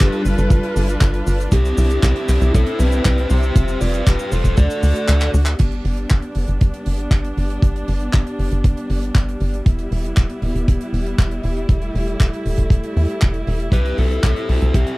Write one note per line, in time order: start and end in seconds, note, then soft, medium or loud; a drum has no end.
0.00 0.11 G1 loud
0.00 1.50 G3 medium
0.00 0.22 D4 medium
0.00 3.52 D4 medium
0.00 1.50 F4 medium
0.00 0.21 G4 medium
0.00 1.50 A4 medium
0.00 1.50 B4 medium
0.00 kick loud
0.00 clap loud
0.00 closed hi-hat loud
0.12 closed hi-hat medium
0.25 0.36 G1 medium
0.25 open hi-hat medium
0.25 cabasa medium
0.38 0.49 G1 medium
0.38 closed hi-hat medium
0.38 cabasa soft
0.50 0.61 G1 loud
0.50 kick loud
0.50 closed hi-hat medium
0.50 cabasa medium
0.63 closed hi-hat medium
0.76 0.97 G1 medium
0.76 open hi-hat loud
0.76 cabasa medium
0.88 closed hi-hat medium
0.88 cabasa medium
1.01 1.23 G1 medium
1.01 kick loud
1.01 clap loud
1.01 closed hi-hat loud
1.01 cabasa medium
1.14 closed hi-hat medium
1.27 1.48 G1 medium
1.27 open hi-hat loud
1.27 cabasa medium
1.40 closed hi-hat medium
1.40 cabasa medium
1.51 1.73 C2 loud
1.51 4.54 C4 medium
1.51 3.54 E4 medium
1.51 2.00 E4 medium
1.51 2.02 G4 medium
1.51 kick loud
1.51 closed hi-hat loud
1.51 cabasa medium
1.65 closed hi-hat medium
1.65 cabasa soft
1.78 1.99 C2 loud
1.78 open hi-hat loud
1.78 cabasa medium
1.90 closed hi-hat medium
1.90 cabasa soft
2.03 2.14 C2 loud
2.03 2.51 E4 medium
2.03 2.51 G4 medium
2.03 kick loud
2.03 clap loud
2.03 closed hi-hat loud
2.03 cabasa medium
2.16 closed hi-hat medium
2.28 2.39 C2 medium
2.28 clap medium
2.28 open hi-hat loud
2.28 cabasa medium
2.41 2.52 C2 medium
2.41 closed hi-hat medium
2.41 cabasa soft
2.54 2.65 C2 loud
2.54 2.78 E4 medium
2.54 2.78 A4 loud
2.54 kick loud
2.54 closed hi-hat loud
2.54 cabasa medium
2.66 closed hi-hat medium
2.79 3.01 C2 medium
2.79 3.27 G4 medium
2.79 3.30 B4 loud
2.79 open hi-hat loud
2.79 cabasa medium
2.92 closed hi-hat medium
2.92 cabasa soft
3.05 3.26 C2 medium
3.05 kick loud
3.05 clap loud
3.05 closed hi-hat loud
3.05 cabasa medium
3.18 closed hi-hat medium
3.30 3.52 C2 medium
3.30 3.78 G4 medium
3.30 3.78 C5 loud
3.30 open hi-hat loud
3.30 cabasa medium
3.42 closed hi-hat medium
3.42 cabasa soft
3.56 3.77 F1 loud
3.56 4.56 G3 medium
3.56 4.56 F4 medium
3.56 kick loud
3.56 closed hi-hat loud
3.56 cabasa medium
3.68 closed hi-hat medium
3.68 cabasa soft
3.81 4.02 F1 loud
3.81 4.05 B4 medium
3.81 4.07 D5 loud
3.81 open hi-hat loud
3.81 cabasa medium
3.94 closed hi-hat medium
3.94 cabasa soft
4.06 4.17 F1 loud
4.06 4.31 G4 medium
4.06 4.30 B4 loud
4.06 kick loud
4.06 clap loud
4.06 closed hi-hat loud
4.06 cabasa medium
4.19 closed hi-hat medium
4.19 cabasa soft
4.32 4.43 F1 medium
4.32 4.56 A4 medium
4.32 4.57 C5 loud
4.32 open hi-hat loud
4.32 cabasa medium
4.44 4.55 F1 medium
4.44 kick medium
4.44 closed hi-hat medium
4.44 cabasa soft
4.57 4.68 D2 loud
4.57 5.58 A3 medium
4.57 5.58 D4 medium
4.57 5.58 F#4 medium
4.57 5.30 A4 medium
4.57 5.30 D5 loud
4.57 kick loud
4.57 closed hi-hat loud
4.57 cabasa medium
4.70 closed hi-hat medium
4.70 cabasa medium
4.83 4.94 D2 medium
4.83 open hi-hat loud
4.83 cabasa medium
4.95 closed hi-hat medium
4.95 cabasa soft
5.08 5.30 D2 loud
5.08 clap loud
5.08 closed hi-hat loud
5.08 cabasa medium
5.20 clap medium
5.20 closed hi-hat medium
5.20 cabasa soft
5.34 5.55 D2 medium
5.34 open hi-hat loud
5.34 cabasa medium
5.46 clap loud
5.46 closed hi-hat medium
5.46 cabasa soft
5.59 5.81 G1 loud
5.59 14.98 G3 medium
5.59 9.62 B3 medium
5.59 9.62 D4 medium
5.59 kick loud
5.59 closed hi-hat loud
5.59 crash medium
5.72 closed hi-hat medium
5.85 6.06 G1 medium
5.85 open hi-hat loud
5.97 closed hi-hat medium
6.10 6.21 G1 medium
6.10 kick loud
6.10 clap loud
6.10 closed hi-hat medium
6.22 closed hi-hat medium
6.35 6.46 G1 medium
6.35 open hi-hat loud
6.48 6.59 G1 medium
6.48 closed hi-hat medium
6.61 6.72 G1 loud
6.61 kick loud
6.61 closed hi-hat loud
6.74 closed hi-hat medium
6.86 7.08 G1 medium
6.86 open hi-hat loud
6.99 closed hi-hat medium
7.11 7.33 G1 medium
7.11 kick loud
7.11 clap loud
7.11 closed hi-hat medium
7.24 closed hi-hat medium
7.37 7.58 G1 medium
7.37 open hi-hat loud
7.50 closed hi-hat medium
7.62 7.84 G1 loud
7.62 kick loud
7.62 closed hi-hat medium
7.76 closed hi-hat medium
7.88 8.09 G1 medium
7.88 open hi-hat loud
8.00 closed hi-hat medium
8.13 8.24 G1 medium
8.13 kick loud
8.13 clap loud
8.13 closed hi-hat medium
8.27 closed hi-hat medium
8.39 8.50 G1 medium
8.39 open hi-hat loud
8.51 8.62 G1 medium
8.51 closed hi-hat medium
8.64 8.75 G1 loud
8.64 kick loud
8.64 closed hi-hat medium
8.77 closed hi-hat medium
8.90 9.11 G1 medium
8.90 open hi-hat loud
9.03 closed hi-hat medium
9.15 9.36 G1 medium
9.15 kick loud
9.15 clap loud
9.15 closed hi-hat medium
9.29 closed hi-hat medium
9.40 9.62 G1 medium
9.40 open hi-hat medium
9.54 closed hi-hat medium
9.66 9.87 E1 loud
9.66 11.68 B3 medium
9.66 14.98 E4 medium
9.66 kick loud
9.66 closed hi-hat loud
9.79 closed hi-hat medium
9.91 10.13 E1 loud
9.91 open hi-hat loud
10.04 closed hi-hat medium
10.16 10.28 E1 medium
10.16 kick loud
10.16 clap loud
10.16 closed hi-hat medium
10.29 closed hi-hat soft
10.42 10.53 E1 medium
10.42 open hi-hat loud
10.55 10.65 E1 medium
10.55 closed hi-hat medium
10.68 10.78 E1 loud
10.68 kick loud
10.68 closed hi-hat medium
10.81 closed hi-hat medium
10.93 11.14 E1 medium
10.93 open hi-hat loud
11.06 closed hi-hat medium
11.18 11.40 E1 medium
11.18 kick loud
11.18 clap loud
11.18 closed hi-hat loud
11.31 closed hi-hat medium
11.43 11.65 E1 medium
11.43 open hi-hat medium
11.57 closed hi-hat soft
11.69 11.90 E1 loud
11.69 13.71 A3 medium
11.69 kick loud
11.69 closed hi-hat medium
11.82 closed hi-hat soft
11.95 12.16 E1 medium
11.95 open hi-hat medium
12.08 closed hi-hat medium
12.20 12.31 E1 medium
12.20 kick loud
12.20 clap loud
12.20 closed hi-hat medium
12.33 closed hi-hat medium
12.46 12.56 E1 medium
12.46 open hi-hat loud
12.58 12.69 E1 medium
12.58 kick medium
12.58 closed hi-hat medium
12.70 12.81 E1 loud
12.70 kick loud
12.70 closed hi-hat loud
12.83 closed hi-hat medium
12.96 13.07 E2 medium
12.96 open hi-hat loud
13.09 closed hi-hat medium
13.21 13.43 E1 loud
13.21 kick loud
13.21 clap loud
13.21 closed hi-hat medium
13.34 closed hi-hat soft
13.47 13.69 E1 loud
13.47 open hi-hat loud
13.60 closed hi-hat medium
13.72 13.94 C2 medium
13.72 14.98 C4 medium
13.72 13.97 G4 medium
13.72 13.98 B4 loud
13.72 kick loud
13.72 closed hi-hat loud
13.85 closed hi-hat soft
13.98 14.19 C2 medium
13.98 14.22 F#4 medium
13.98 14.23 A4 medium
13.98 open hi-hat loud
14.11 closed hi-hat medium
14.23 14.34 C2 medium
14.23 14.48 E4 medium
14.23 14.47 A4 medium
14.23 kick loud
14.23 clap loud
14.23 closed hi-hat loud
14.36 closed hi-hat medium
14.49 14.60 C2 medium
14.49 14.73 F#4 medium
14.49 14.75 A4 medium
14.49 open hi-hat loud
14.62 14.72 C2 medium
14.62 closed hi-hat medium
14.74 14.85 C2 loud
14.74 14.98 E4 medium
14.74 14.98 G4 medium
14.74 kick loud
14.74 closed hi-hat loud
14.87 closed hi-hat medium